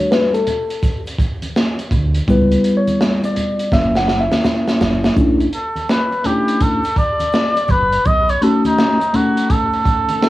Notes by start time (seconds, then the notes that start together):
Already playing: G3 A3 D4 F#4 C#5
0.11 B4, snare, shaker
0.34 A4, closed hi-hat, shaker
0.47 closed hi-hat, low conga, shaker
0.70 closed hi-hat, shaker
0.83 kick, closed hi-hat, shaker
1.07 closed hi-hat, shaker
1.19 kick, closed hi-hat, shaker
1.42 closed hi-hat, high conga, shaker
1.56 snare, shaker
1.79 closed hi-hat, shaker
1.91 D2, kick, closed hi-hat, low conga, shaker
2.14 closed hi-hat, shaker
2.28 C#2 G3 B3 E4 B4, kick, closed hi-hat, shaker
2.51 closed hi-hat, shaker
2.64 closed hi-hat, shaker
2.77 C#5
2.87 closed hi-hat, high conga, shaker
3.01 snare, shaker
3.24 D5, closed hi-hat, shaker
3.36 closed hi-hat, low conga, shaker
3.59 closed hi-hat, shaker
3.72 F#1 A#3 C#4 E4 E5, kick, snare, shaker
3.96 F#5, snare, shaker
4.08 snare, shaker
4.21 E5
4.32 snare, high conga, shaker
4.45 snare, low conga, shaker
4.68 snare, shaker
4.81 F#1, snare, low conga, shaker
5.04 snare, shaker
5.16 B1 A3 C#4 D4 E4, kick, closed hi-hat, shaker
5.40 closed hi-hat, shaker
5.53 A4, closed hi-hat, shaker
5.76 closed hi-hat, high conga, shaker
5.89 B4, snare, shaker
6.12 closed hi-hat, shaker
6.24 A3 C#4 D4 E4 G4, closed hi-hat, low conga, shaker
6.48 closed hi-hat, shaker
6.61 A4, kick, closed hi-hat, shaker
6.83 closed hi-hat, shaker
6.96 D5, kick, closed hi-hat, shaker
7.20 closed hi-hat, high conga, shaker
7.32 snare, shaker
7.56 closed hi-hat, shaker
7.68 F#1 B4, kick, closed hi-hat, low conga, shaker
7.92 closed hi-hat, shaker
8.05 B1 D#5, kick, closed hi-hat, shaker
8.28 C#5, closed hi-hat, shaker
8.41 A3 C#4 D#4 F#4 A4, closed hi-hat, shaker
8.65 D#4, closed hi-hat, high conga, shaker
8.78 snare, shaker
9.01 closed hi-hat, shaker
9.13 A3 C#4 D#4 F#4 A4, closed hi-hat, low conga, shaker
9.37 closed hi-hat, shaker
9.50 A4, kick, closed hi-hat, shaker
9.72 closed hi-hat, shaker
9.86 kick, closed hi-hat, shaker
10.09 closed hi-hat, high conga, shaker
10.21 A3 C#4 D#4 A4, snare, shaker